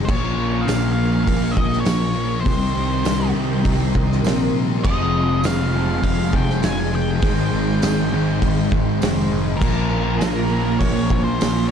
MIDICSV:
0, 0, Header, 1, 8, 480
1, 0, Start_track
1, 0, Tempo, 595829
1, 66, Time_signature, 4, 2, 24, 8
1, 9434, End_track
2, 0, Start_track
2, 0, Title_t, "String machine"
2, 0, Program_c, 0, 50
2, 65, Note_on_c, 0, 77, 74
2, 69, Note_on_c, 0, 85, 85
2, 71, Note_on_c, 0, 70, 80
2, 74, Note_on_c, 0, 80, 76
2, 1965, Note_off_c, 0, 77, 0
2, 1967, Note_off_c, 0, 85, 0
2, 1968, Note_off_c, 0, 70, 0
2, 1970, Note_off_c, 0, 80, 0
2, 1980, Note_on_c, 0, 79, 74
2, 1981, Note_on_c, 0, 70, 83
2, 1981, Note_on_c, 0, 84, 91
2, 1986, Note_on_c, 0, 75, 72
2, 3883, Note_off_c, 0, 79, 0
2, 3884, Note_off_c, 0, 70, 0
2, 3902, Note_on_c, 0, 77, 71
2, 3911, Note_on_c, 0, 68, 84
2, 5805, Note_off_c, 0, 77, 0
2, 5809, Note_on_c, 0, 79, 73
2, 7713, Note_off_c, 0, 84, 0
2, 7715, Note_off_c, 0, 75, 0
2, 7718, Note_off_c, 0, 68, 0
2, 7719, Note_off_c, 0, 79, 0
2, 7719, Note_on_c, 0, 80, 73
2, 7720, Note_on_c, 0, 77, 73
2, 7721, Note_on_c, 0, 70, 84
2, 7722, Note_on_c, 0, 82, 85
2, 9434, Note_off_c, 0, 70, 0
2, 9434, Note_off_c, 0, 77, 0
2, 9434, Note_off_c, 0, 80, 0
2, 9434, Note_off_c, 0, 82, 0
2, 9434, End_track
3, 0, Start_track
3, 0, Title_t, "Lead electric guitar"
3, 0, Program_c, 1, 29
3, 42, Note_on_c, 1, 73, 95
3, 493, Note_on_c, 1, 77, 95
3, 548, Note_off_c, 1, 73, 0
3, 736, Note_off_c, 1, 77, 0
3, 746, Note_on_c, 1, 77, 104
3, 992, Note_off_c, 1, 77, 0
3, 1002, Note_on_c, 1, 77, 110
3, 1221, Note_on_c, 1, 75, 90
3, 1261, Note_off_c, 1, 77, 0
3, 1449, Note_off_c, 1, 75, 0
3, 1452, Note_on_c, 1, 73, 97
3, 1936, Note_off_c, 1, 73, 0
3, 1939, Note_on_c, 1, 72, 83
3, 2649, Note_off_c, 1, 72, 0
3, 3896, Note_on_c, 1, 75, 86
3, 4393, Note_on_c, 1, 77, 90
3, 4395, Note_off_c, 1, 75, 0
3, 4861, Note_off_c, 1, 77, 0
3, 4871, Note_on_c, 1, 77, 105
3, 5115, Note_off_c, 1, 77, 0
3, 5126, Note_on_c, 1, 79, 89
3, 5351, Note_off_c, 1, 79, 0
3, 5355, Note_on_c, 1, 80, 109
3, 5597, Note_off_c, 1, 80, 0
3, 5603, Note_on_c, 1, 79, 98
3, 7483, Note_off_c, 1, 79, 0
3, 7710, Note_on_c, 1, 70, 88
3, 8194, Note_off_c, 1, 70, 0
3, 8203, Note_on_c, 1, 70, 78
3, 8693, Note_on_c, 1, 73, 105
3, 8710, Note_off_c, 1, 70, 0
3, 9051, Note_off_c, 1, 73, 0
3, 9055, Note_on_c, 1, 72, 92
3, 9410, Note_off_c, 1, 72, 0
3, 9434, End_track
4, 0, Start_track
4, 0, Title_t, "Overdriven electric guitar"
4, 0, Program_c, 2, 29
4, 85, Note_on_c, 2, 61, 78
4, 94, Note_on_c, 2, 65, 79
4, 1981, Note_on_c, 2, 51, 70
4, 1985, Note_off_c, 2, 61, 0
4, 1995, Note_off_c, 2, 65, 0
4, 1998, Note_on_c, 2, 67, 93
4, 3890, Note_off_c, 2, 51, 0
4, 3894, Note_on_c, 2, 53, 71
4, 3904, Note_off_c, 2, 67, 0
4, 3905, Note_on_c, 2, 56, 81
4, 3907, Note_on_c, 2, 68, 76
4, 3910, Note_on_c, 2, 60, 76
4, 5815, Note_off_c, 2, 60, 0
4, 5820, Note_off_c, 2, 53, 0
4, 5822, Note_off_c, 2, 56, 0
4, 5825, Note_on_c, 2, 60, 80
4, 5829, Note_off_c, 2, 68, 0
4, 5829, Note_on_c, 2, 63, 78
4, 5832, Note_on_c, 2, 68, 84
4, 7747, Note_off_c, 2, 60, 0
4, 7749, Note_off_c, 2, 63, 0
4, 7750, Note_off_c, 2, 68, 0
4, 7761, Note_on_c, 2, 61, 88
4, 7767, Note_on_c, 2, 65, 86
4, 9434, Note_off_c, 2, 61, 0
4, 9434, Note_off_c, 2, 65, 0
4, 9434, End_track
5, 0, Start_track
5, 0, Title_t, "Distorted electric guitar"
5, 0, Program_c, 3, 30
5, 47, Note_on_c, 3, 46, 98
5, 57, Note_on_c, 3, 53, 94
5, 68, Note_on_c, 3, 58, 97
5, 271, Note_off_c, 3, 58, 0
5, 274, Note_on_c, 3, 58, 82
5, 287, Note_off_c, 3, 53, 0
5, 297, Note_on_c, 3, 53, 65
5, 513, Note_off_c, 3, 46, 0
5, 523, Note_on_c, 3, 46, 84
5, 526, Note_off_c, 3, 53, 0
5, 536, Note_on_c, 3, 53, 83
5, 544, Note_off_c, 3, 58, 0
5, 547, Note_on_c, 3, 58, 85
5, 754, Note_off_c, 3, 58, 0
5, 758, Note_on_c, 3, 58, 75
5, 770, Note_off_c, 3, 53, 0
5, 780, Note_on_c, 3, 53, 69
5, 989, Note_off_c, 3, 46, 0
5, 999, Note_on_c, 3, 46, 94
5, 1003, Note_off_c, 3, 53, 0
5, 1011, Note_off_c, 3, 58, 0
5, 1013, Note_on_c, 3, 53, 108
5, 1020, Note_on_c, 3, 58, 116
5, 1236, Note_off_c, 3, 58, 0
5, 1245, Note_on_c, 3, 58, 73
5, 1261, Note_off_c, 3, 53, 0
5, 1271, Note_on_c, 3, 53, 61
5, 1479, Note_off_c, 3, 46, 0
5, 1489, Note_on_c, 3, 46, 84
5, 1491, Note_off_c, 3, 53, 0
5, 1498, Note_off_c, 3, 58, 0
5, 1500, Note_on_c, 3, 53, 81
5, 1508, Note_on_c, 3, 58, 79
5, 1719, Note_off_c, 3, 58, 0
5, 1728, Note_on_c, 3, 58, 66
5, 1736, Note_off_c, 3, 53, 0
5, 1746, Note_on_c, 3, 53, 54
5, 1962, Note_off_c, 3, 46, 0
5, 1962, Note_off_c, 3, 58, 0
5, 1969, Note_on_c, 3, 48, 97
5, 1971, Note_off_c, 3, 53, 0
5, 1982, Note_on_c, 3, 55, 100
5, 1996, Note_on_c, 3, 60, 107
5, 2213, Note_off_c, 3, 60, 0
5, 2216, Note_on_c, 3, 60, 80
5, 2230, Note_off_c, 3, 55, 0
5, 2239, Note_on_c, 3, 55, 64
5, 2439, Note_off_c, 3, 48, 0
5, 2449, Note_on_c, 3, 48, 80
5, 2455, Note_off_c, 3, 55, 0
5, 2464, Note_on_c, 3, 55, 80
5, 2469, Note_off_c, 3, 60, 0
5, 2473, Note_on_c, 3, 60, 77
5, 2690, Note_off_c, 3, 60, 0
5, 2693, Note_on_c, 3, 60, 70
5, 2709, Note_off_c, 3, 55, 0
5, 2719, Note_on_c, 3, 55, 58
5, 2919, Note_off_c, 3, 48, 0
5, 2928, Note_on_c, 3, 48, 87
5, 2932, Note_off_c, 3, 55, 0
5, 2941, Note_on_c, 3, 55, 92
5, 2946, Note_off_c, 3, 60, 0
5, 2949, Note_on_c, 3, 60, 104
5, 3173, Note_off_c, 3, 60, 0
5, 3176, Note_on_c, 3, 60, 77
5, 3191, Note_off_c, 3, 55, 0
5, 3200, Note_on_c, 3, 55, 64
5, 3406, Note_off_c, 3, 48, 0
5, 3416, Note_off_c, 3, 55, 0
5, 3416, Note_on_c, 3, 48, 80
5, 3425, Note_on_c, 3, 55, 81
5, 3434, Note_off_c, 3, 60, 0
5, 3437, Note_on_c, 3, 60, 88
5, 3659, Note_off_c, 3, 60, 0
5, 3662, Note_on_c, 3, 60, 71
5, 3678, Note_off_c, 3, 55, 0
5, 3688, Note_on_c, 3, 55, 55
5, 3886, Note_off_c, 3, 48, 0
5, 3902, Note_off_c, 3, 55, 0
5, 3902, Note_on_c, 3, 41, 88
5, 3917, Note_on_c, 3, 48, 98
5, 3927, Note_on_c, 3, 53, 104
5, 4133, Note_off_c, 3, 53, 0
5, 4142, Note_on_c, 3, 53, 76
5, 4162, Note_off_c, 3, 48, 0
5, 4172, Note_on_c, 3, 48, 64
5, 4367, Note_off_c, 3, 41, 0
5, 4377, Note_on_c, 3, 41, 78
5, 4382, Note_off_c, 3, 48, 0
5, 4391, Note_on_c, 3, 48, 81
5, 4393, Note_off_c, 3, 53, 0
5, 4403, Note_on_c, 3, 53, 87
5, 4618, Note_off_c, 3, 53, 0
5, 4628, Note_on_c, 3, 53, 72
5, 4636, Note_off_c, 3, 48, 0
5, 4646, Note_on_c, 3, 48, 57
5, 4835, Note_off_c, 3, 41, 0
5, 4845, Note_on_c, 3, 41, 95
5, 4849, Note_off_c, 3, 48, 0
5, 4858, Note_on_c, 3, 48, 96
5, 4863, Note_off_c, 3, 53, 0
5, 4873, Note_on_c, 3, 53, 108
5, 5074, Note_off_c, 3, 53, 0
5, 5084, Note_on_c, 3, 53, 70
5, 5096, Note_off_c, 3, 48, 0
5, 5106, Note_on_c, 3, 48, 63
5, 5314, Note_off_c, 3, 41, 0
5, 5323, Note_on_c, 3, 41, 81
5, 5326, Note_off_c, 3, 48, 0
5, 5336, Note_off_c, 3, 53, 0
5, 5336, Note_on_c, 3, 48, 81
5, 5346, Note_on_c, 3, 53, 87
5, 5565, Note_off_c, 3, 53, 0
5, 5575, Note_on_c, 3, 53, 69
5, 5586, Note_off_c, 3, 48, 0
5, 5595, Note_on_c, 3, 48, 60
5, 5794, Note_off_c, 3, 41, 0
5, 5798, Note_on_c, 3, 44, 90
5, 5805, Note_off_c, 3, 48, 0
5, 5806, Note_off_c, 3, 53, 0
5, 5808, Note_on_c, 3, 51, 99
5, 5819, Note_on_c, 3, 56, 104
5, 6043, Note_off_c, 3, 56, 0
5, 6046, Note_on_c, 3, 56, 81
5, 6057, Note_off_c, 3, 51, 0
5, 6067, Note_on_c, 3, 51, 61
5, 6290, Note_off_c, 3, 44, 0
5, 6299, Note_on_c, 3, 44, 81
5, 6306, Note_off_c, 3, 51, 0
5, 6315, Note_off_c, 3, 56, 0
5, 6316, Note_on_c, 3, 51, 76
5, 6319, Note_on_c, 3, 56, 84
5, 6482, Note_off_c, 3, 60, 0
5, 6545, Note_off_c, 3, 56, 0
5, 6548, Note_on_c, 3, 56, 78
5, 6557, Note_off_c, 3, 51, 0
5, 6567, Note_on_c, 3, 51, 66
5, 6770, Note_off_c, 3, 44, 0
5, 6780, Note_off_c, 3, 51, 0
5, 6780, Note_on_c, 3, 44, 97
5, 6789, Note_off_c, 3, 56, 0
5, 6790, Note_on_c, 3, 51, 106
5, 6798, Note_on_c, 3, 56, 104
5, 7004, Note_off_c, 3, 56, 0
5, 7014, Note_on_c, 3, 56, 82
5, 7027, Note_off_c, 3, 51, 0
5, 7037, Note_on_c, 3, 51, 62
5, 7249, Note_off_c, 3, 44, 0
5, 7257, Note_off_c, 3, 51, 0
5, 7258, Note_on_c, 3, 44, 76
5, 7265, Note_off_c, 3, 56, 0
5, 7267, Note_on_c, 3, 51, 82
5, 7275, Note_on_c, 3, 56, 81
5, 7490, Note_off_c, 3, 56, 0
5, 7499, Note_on_c, 3, 56, 75
5, 7507, Note_off_c, 3, 51, 0
5, 7516, Note_on_c, 3, 51, 64
5, 7728, Note_off_c, 3, 44, 0
5, 7729, Note_off_c, 3, 56, 0
5, 7730, Note_off_c, 3, 51, 0
5, 7733, Note_on_c, 3, 46, 88
5, 7752, Note_on_c, 3, 53, 98
5, 7758, Note_on_c, 3, 58, 90
5, 7976, Note_off_c, 3, 58, 0
5, 7980, Note_on_c, 3, 58, 73
5, 7992, Note_off_c, 3, 53, 0
5, 8001, Note_on_c, 3, 53, 68
5, 8202, Note_off_c, 3, 46, 0
5, 8212, Note_on_c, 3, 46, 75
5, 8214, Note_off_c, 3, 53, 0
5, 8223, Note_on_c, 3, 53, 85
5, 8232, Note_off_c, 3, 58, 0
5, 8235, Note_on_c, 3, 58, 93
5, 8449, Note_off_c, 3, 58, 0
5, 8452, Note_on_c, 3, 58, 82
5, 8465, Note_off_c, 3, 53, 0
5, 8475, Note_on_c, 3, 53, 67
5, 8680, Note_off_c, 3, 46, 0
5, 8687, Note_off_c, 3, 53, 0
5, 8690, Note_on_c, 3, 46, 100
5, 8696, Note_on_c, 3, 53, 99
5, 8697, Note_off_c, 3, 58, 0
5, 8707, Note_on_c, 3, 58, 106
5, 8921, Note_off_c, 3, 58, 0
5, 8931, Note_on_c, 3, 58, 71
5, 8943, Note_off_c, 3, 53, 0
5, 8953, Note_on_c, 3, 53, 63
5, 9169, Note_off_c, 3, 46, 0
5, 9179, Note_on_c, 3, 46, 73
5, 9185, Note_off_c, 3, 53, 0
5, 9194, Note_on_c, 3, 53, 84
5, 9196, Note_off_c, 3, 58, 0
5, 9206, Note_on_c, 3, 58, 91
5, 9418, Note_off_c, 3, 58, 0
5, 9434, Note_off_c, 3, 46, 0
5, 9434, Note_off_c, 3, 53, 0
5, 9434, End_track
6, 0, Start_track
6, 0, Title_t, "Overdriven electric guitar"
6, 0, Program_c, 4, 29
6, 4639, Note_on_c, 4, 41, 70
6, 5323, Note_off_c, 4, 41, 0
6, 6554, Note_on_c, 4, 44, 75
6, 7252, Note_off_c, 4, 44, 0
6, 8472, Note_on_c, 4, 46, 67
6, 9164, Note_off_c, 4, 46, 0
6, 9434, End_track
7, 0, Start_track
7, 0, Title_t, "Picked electric bass"
7, 0, Program_c, 5, 34
7, 66, Note_on_c, 5, 34, 99
7, 513, Note_off_c, 5, 34, 0
7, 542, Note_on_c, 5, 34, 92
7, 991, Note_off_c, 5, 34, 0
7, 1028, Note_on_c, 5, 34, 92
7, 1246, Note_off_c, 5, 34, 0
7, 1264, Note_on_c, 5, 34, 81
7, 1484, Note_off_c, 5, 34, 0
7, 1505, Note_on_c, 5, 34, 91
7, 1953, Note_off_c, 5, 34, 0
7, 1981, Note_on_c, 5, 36, 98
7, 2202, Note_off_c, 5, 36, 0
7, 2226, Note_on_c, 5, 36, 79
7, 2445, Note_off_c, 5, 36, 0
7, 2457, Note_on_c, 5, 36, 86
7, 2680, Note_off_c, 5, 36, 0
7, 2697, Note_on_c, 5, 36, 90
7, 2920, Note_off_c, 5, 36, 0
7, 2942, Note_on_c, 5, 36, 95
7, 3163, Note_off_c, 5, 36, 0
7, 3185, Note_on_c, 5, 36, 84
7, 3404, Note_off_c, 5, 36, 0
7, 3413, Note_on_c, 5, 34, 97
7, 3637, Note_off_c, 5, 34, 0
7, 3653, Note_on_c, 5, 34, 91
7, 3877, Note_off_c, 5, 34, 0
7, 3909, Note_on_c, 5, 29, 96
7, 4354, Note_off_c, 5, 29, 0
7, 4379, Note_on_c, 5, 29, 93
7, 4830, Note_off_c, 5, 29, 0
7, 4865, Note_on_c, 5, 29, 94
7, 5085, Note_off_c, 5, 29, 0
7, 5104, Note_on_c, 5, 29, 86
7, 5324, Note_off_c, 5, 29, 0
7, 5344, Note_on_c, 5, 29, 97
7, 5793, Note_off_c, 5, 29, 0
7, 5823, Note_on_c, 5, 32, 97
7, 6043, Note_off_c, 5, 32, 0
7, 6067, Note_on_c, 5, 32, 82
7, 6286, Note_off_c, 5, 32, 0
7, 6306, Note_on_c, 5, 32, 92
7, 6525, Note_off_c, 5, 32, 0
7, 6546, Note_on_c, 5, 32, 89
7, 6765, Note_off_c, 5, 32, 0
7, 6787, Note_on_c, 5, 32, 93
7, 7006, Note_off_c, 5, 32, 0
7, 7026, Note_on_c, 5, 32, 91
7, 7245, Note_off_c, 5, 32, 0
7, 7266, Note_on_c, 5, 29, 95
7, 7486, Note_off_c, 5, 29, 0
7, 7506, Note_on_c, 5, 29, 90
7, 7746, Note_off_c, 5, 29, 0
7, 7746, Note_on_c, 5, 34, 101
7, 8195, Note_off_c, 5, 34, 0
7, 8227, Note_on_c, 5, 34, 89
7, 8675, Note_off_c, 5, 34, 0
7, 8710, Note_on_c, 5, 34, 92
7, 8928, Note_off_c, 5, 34, 0
7, 8950, Note_on_c, 5, 34, 85
7, 9168, Note_off_c, 5, 34, 0
7, 9199, Note_on_c, 5, 34, 93
7, 9434, Note_off_c, 5, 34, 0
7, 9434, End_track
8, 0, Start_track
8, 0, Title_t, "Drums"
8, 70, Note_on_c, 9, 36, 112
8, 71, Note_on_c, 9, 49, 100
8, 150, Note_off_c, 9, 36, 0
8, 152, Note_off_c, 9, 49, 0
8, 547, Note_on_c, 9, 46, 59
8, 553, Note_on_c, 9, 54, 87
8, 556, Note_on_c, 9, 38, 102
8, 627, Note_off_c, 9, 46, 0
8, 634, Note_off_c, 9, 54, 0
8, 636, Note_off_c, 9, 38, 0
8, 1027, Note_on_c, 9, 36, 88
8, 1027, Note_on_c, 9, 46, 66
8, 1107, Note_off_c, 9, 36, 0
8, 1107, Note_off_c, 9, 46, 0
8, 1264, Note_on_c, 9, 36, 87
8, 1345, Note_off_c, 9, 36, 0
8, 1390, Note_on_c, 9, 38, 34
8, 1471, Note_off_c, 9, 38, 0
8, 1493, Note_on_c, 9, 46, 63
8, 1502, Note_on_c, 9, 38, 120
8, 1505, Note_on_c, 9, 54, 86
8, 1574, Note_off_c, 9, 46, 0
8, 1583, Note_off_c, 9, 38, 0
8, 1586, Note_off_c, 9, 54, 0
8, 1982, Note_on_c, 9, 36, 109
8, 1983, Note_on_c, 9, 46, 60
8, 2062, Note_off_c, 9, 36, 0
8, 2064, Note_off_c, 9, 46, 0
8, 2458, Note_on_c, 9, 54, 92
8, 2459, Note_on_c, 9, 46, 55
8, 2468, Note_on_c, 9, 38, 99
8, 2539, Note_off_c, 9, 54, 0
8, 2540, Note_off_c, 9, 46, 0
8, 2548, Note_off_c, 9, 38, 0
8, 2939, Note_on_c, 9, 46, 53
8, 2942, Note_on_c, 9, 36, 84
8, 3020, Note_off_c, 9, 46, 0
8, 3022, Note_off_c, 9, 36, 0
8, 3183, Note_on_c, 9, 36, 89
8, 3264, Note_off_c, 9, 36, 0
8, 3317, Note_on_c, 9, 38, 32
8, 3397, Note_off_c, 9, 38, 0
8, 3419, Note_on_c, 9, 54, 91
8, 3429, Note_on_c, 9, 46, 59
8, 3438, Note_on_c, 9, 38, 115
8, 3500, Note_off_c, 9, 54, 0
8, 3510, Note_off_c, 9, 46, 0
8, 3519, Note_off_c, 9, 38, 0
8, 3903, Note_on_c, 9, 57, 99
8, 3904, Note_on_c, 9, 36, 111
8, 3984, Note_off_c, 9, 36, 0
8, 3984, Note_off_c, 9, 57, 0
8, 4379, Note_on_c, 9, 54, 105
8, 4384, Note_on_c, 9, 46, 62
8, 4393, Note_on_c, 9, 38, 108
8, 4459, Note_off_c, 9, 54, 0
8, 4464, Note_off_c, 9, 46, 0
8, 4473, Note_off_c, 9, 38, 0
8, 4862, Note_on_c, 9, 36, 82
8, 4864, Note_on_c, 9, 46, 62
8, 4943, Note_off_c, 9, 36, 0
8, 4944, Note_off_c, 9, 46, 0
8, 5101, Note_on_c, 9, 36, 83
8, 5182, Note_off_c, 9, 36, 0
8, 5234, Note_on_c, 9, 38, 34
8, 5314, Note_off_c, 9, 38, 0
8, 5339, Note_on_c, 9, 46, 61
8, 5347, Note_on_c, 9, 54, 89
8, 5348, Note_on_c, 9, 38, 115
8, 5420, Note_off_c, 9, 46, 0
8, 5427, Note_off_c, 9, 54, 0
8, 5428, Note_off_c, 9, 38, 0
8, 5817, Note_on_c, 9, 46, 62
8, 5821, Note_on_c, 9, 36, 114
8, 5898, Note_off_c, 9, 46, 0
8, 5902, Note_off_c, 9, 36, 0
8, 6301, Note_on_c, 9, 46, 57
8, 6303, Note_on_c, 9, 54, 97
8, 6310, Note_on_c, 9, 38, 112
8, 6381, Note_off_c, 9, 46, 0
8, 6383, Note_off_c, 9, 54, 0
8, 6390, Note_off_c, 9, 38, 0
8, 6783, Note_on_c, 9, 46, 55
8, 6784, Note_on_c, 9, 36, 86
8, 6863, Note_off_c, 9, 46, 0
8, 6864, Note_off_c, 9, 36, 0
8, 7025, Note_on_c, 9, 36, 93
8, 7105, Note_off_c, 9, 36, 0
8, 7265, Note_on_c, 9, 54, 97
8, 7267, Note_on_c, 9, 46, 60
8, 7276, Note_on_c, 9, 38, 117
8, 7345, Note_off_c, 9, 54, 0
8, 7347, Note_off_c, 9, 46, 0
8, 7356, Note_off_c, 9, 38, 0
8, 7746, Note_on_c, 9, 36, 111
8, 7749, Note_on_c, 9, 49, 100
8, 7827, Note_off_c, 9, 36, 0
8, 7830, Note_off_c, 9, 49, 0
8, 8225, Note_on_c, 9, 46, 54
8, 8228, Note_on_c, 9, 54, 99
8, 8234, Note_on_c, 9, 38, 103
8, 8306, Note_off_c, 9, 46, 0
8, 8309, Note_off_c, 9, 54, 0
8, 8315, Note_off_c, 9, 38, 0
8, 8706, Note_on_c, 9, 36, 82
8, 8706, Note_on_c, 9, 46, 64
8, 8786, Note_off_c, 9, 36, 0
8, 8786, Note_off_c, 9, 46, 0
8, 8945, Note_on_c, 9, 36, 85
8, 9026, Note_off_c, 9, 36, 0
8, 9190, Note_on_c, 9, 46, 64
8, 9191, Note_on_c, 9, 54, 94
8, 9199, Note_on_c, 9, 38, 114
8, 9271, Note_off_c, 9, 46, 0
8, 9272, Note_off_c, 9, 54, 0
8, 9280, Note_off_c, 9, 38, 0
8, 9434, End_track
0, 0, End_of_file